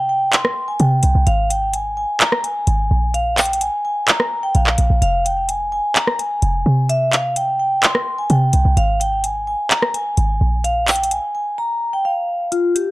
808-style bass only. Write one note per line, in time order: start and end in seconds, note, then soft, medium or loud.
0.00 0.53 C3 loud
0.80 1.02 C3 loud
1.03 1.15 C2 loud
1.15 1.26 C2 loud
1.27 2.06 G#1 loud
2.67 2.90 G#1 loud
2.91 3.70 A#1 loud
4.55 4.77 A#1 loud
4.78 4.90 A#1 loud
4.90 5.01 A#1 loud
5.02 5.81 F1 loud
6.42 6.65 F1 loud
6.66 8.03 C3 loud
8.30 8.52 C3 loud
8.53 8.65 C2 loud
8.65 8.76 C2 loud
8.77 9.56 G#1 loud
10.18 10.40 G#1 loud
10.41 11.20 A#1 loud